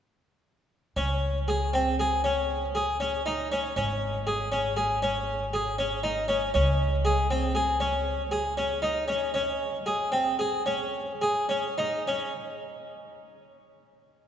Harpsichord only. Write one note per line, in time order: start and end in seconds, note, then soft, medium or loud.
0.97 1.38 C#4 medium
1.48 1.68 G#4 medium
1.74 1.94 C4 medium
2.00 2.20 G#4 medium
2.24 2.65 C#4 medium
2.75 2.95 G#4 medium
3.00 3.21 C#4 medium
3.26 3.46 D#4 medium
3.52 3.72 C#4 medium
3.77 4.17 C#4 medium
4.27 4.47 G#4 medium
4.52 4.72 C#4 medium
4.77 4.97 G#4 medium
5.03 5.43 C#4 medium
5.53 5.74 G#4 medium
5.79 5.99 C#4 medium
6.03 6.24 D#4 medium
6.28 6.49 C#4 medium
6.54 6.95 C#4 medium
7.05 7.25 G#4 medium
7.31 7.51 C4 medium
7.55 7.75 G#4 medium
7.80 8.21 C#4 medium
8.31 8.52 G#4 medium
8.57 8.78 C#4 medium
8.82 9.03 D#4 medium
9.08 9.29 C#4 medium
9.34 9.76 C#4 medium
9.86 10.07 G#4 medium
10.12 10.34 C4 medium
10.39 10.61 G#4 medium
10.66 11.10 C#4 medium
11.21 11.44 G#4 medium
11.49 11.72 C#4 medium
11.78 12.01 D#4 medium
12.08 12.31 C#4 medium